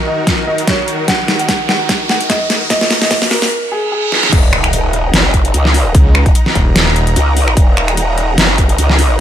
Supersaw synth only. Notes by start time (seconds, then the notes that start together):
Already playing: D#3 D#4 F#4 A#4
4.32 D#4 D#5 F#5 A#5